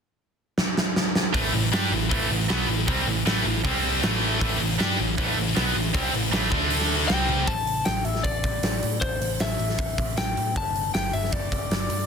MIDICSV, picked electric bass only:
0, 0, Header, 1, 2, 480
1, 0, Start_track
1, 0, Key_signature, 0, "minor"
1, 0, Tempo, 384369
1, 1668, Time_signature, 4, 2, 24, 8
1, 9345, Key_signature, 0, "minor"
1, 15066, End_track
2, 0, Start_track
2, 0, Title_t, "Picked electric bass"
2, 0, Program_c, 0, 34
2, 1675, Note_on_c, 0, 33, 90
2, 1895, Note_off_c, 0, 33, 0
2, 1913, Note_on_c, 0, 33, 79
2, 2134, Note_off_c, 0, 33, 0
2, 2163, Note_on_c, 0, 43, 82
2, 2379, Note_off_c, 0, 43, 0
2, 2394, Note_on_c, 0, 33, 86
2, 2615, Note_off_c, 0, 33, 0
2, 2637, Note_on_c, 0, 33, 93
2, 2856, Note_off_c, 0, 33, 0
2, 2879, Note_on_c, 0, 33, 78
2, 3097, Note_off_c, 0, 33, 0
2, 3123, Note_on_c, 0, 35, 94
2, 3339, Note_off_c, 0, 35, 0
2, 3349, Note_on_c, 0, 33, 82
2, 3572, Note_off_c, 0, 33, 0
2, 3596, Note_on_c, 0, 36, 94
2, 3815, Note_off_c, 0, 36, 0
2, 3826, Note_on_c, 0, 33, 78
2, 4050, Note_off_c, 0, 33, 0
2, 4062, Note_on_c, 0, 33, 81
2, 4288, Note_off_c, 0, 33, 0
2, 4305, Note_on_c, 0, 33, 89
2, 4529, Note_off_c, 0, 33, 0
2, 4552, Note_on_c, 0, 36, 101
2, 4996, Note_off_c, 0, 36, 0
2, 5037, Note_on_c, 0, 33, 100
2, 5479, Note_off_c, 0, 33, 0
2, 5514, Note_on_c, 0, 33, 101
2, 5734, Note_off_c, 0, 33, 0
2, 5746, Note_on_c, 0, 33, 81
2, 5969, Note_off_c, 0, 33, 0
2, 5982, Note_on_c, 0, 43, 91
2, 6207, Note_off_c, 0, 43, 0
2, 6235, Note_on_c, 0, 33, 88
2, 6454, Note_off_c, 0, 33, 0
2, 6468, Note_on_c, 0, 33, 94
2, 6690, Note_off_c, 0, 33, 0
2, 6704, Note_on_c, 0, 33, 80
2, 6928, Note_off_c, 0, 33, 0
2, 6939, Note_on_c, 0, 35, 101
2, 7166, Note_off_c, 0, 35, 0
2, 7180, Note_on_c, 0, 33, 74
2, 7406, Note_off_c, 0, 33, 0
2, 7424, Note_on_c, 0, 36, 89
2, 7648, Note_off_c, 0, 36, 0
2, 7659, Note_on_c, 0, 33, 71
2, 7876, Note_off_c, 0, 33, 0
2, 7884, Note_on_c, 0, 33, 85
2, 8117, Note_off_c, 0, 33, 0
2, 8141, Note_on_c, 0, 38, 97
2, 8813, Note_off_c, 0, 38, 0
2, 8865, Note_on_c, 0, 36, 99
2, 9311, Note_off_c, 0, 36, 0
2, 9330, Note_on_c, 0, 33, 84
2, 9742, Note_off_c, 0, 33, 0
2, 9820, Note_on_c, 0, 33, 75
2, 10025, Note_off_c, 0, 33, 0
2, 10047, Note_on_c, 0, 33, 85
2, 10257, Note_off_c, 0, 33, 0
2, 10294, Note_on_c, 0, 33, 80
2, 10705, Note_off_c, 0, 33, 0
2, 10772, Note_on_c, 0, 33, 87
2, 10980, Note_off_c, 0, 33, 0
2, 11030, Note_on_c, 0, 45, 79
2, 11231, Note_off_c, 0, 45, 0
2, 11261, Note_on_c, 0, 33, 92
2, 11466, Note_off_c, 0, 33, 0
2, 11491, Note_on_c, 0, 33, 75
2, 11700, Note_off_c, 0, 33, 0
2, 11741, Note_on_c, 0, 33, 80
2, 11946, Note_off_c, 0, 33, 0
2, 11976, Note_on_c, 0, 33, 85
2, 12183, Note_off_c, 0, 33, 0
2, 12220, Note_on_c, 0, 33, 82
2, 12425, Note_off_c, 0, 33, 0
2, 12466, Note_on_c, 0, 33, 76
2, 12669, Note_off_c, 0, 33, 0
2, 12718, Note_on_c, 0, 33, 89
2, 12915, Note_off_c, 0, 33, 0
2, 12959, Note_on_c, 0, 45, 85
2, 13183, Note_on_c, 0, 31, 92
2, 13202, Note_off_c, 0, 45, 0
2, 13589, Note_off_c, 0, 31, 0
2, 13669, Note_on_c, 0, 31, 85
2, 13870, Note_off_c, 0, 31, 0
2, 13900, Note_on_c, 0, 31, 88
2, 14104, Note_off_c, 0, 31, 0
2, 14137, Note_on_c, 0, 31, 80
2, 14546, Note_off_c, 0, 31, 0
2, 14615, Note_on_c, 0, 31, 86
2, 14821, Note_off_c, 0, 31, 0
2, 14862, Note_on_c, 0, 43, 83
2, 15065, Note_off_c, 0, 43, 0
2, 15066, End_track
0, 0, End_of_file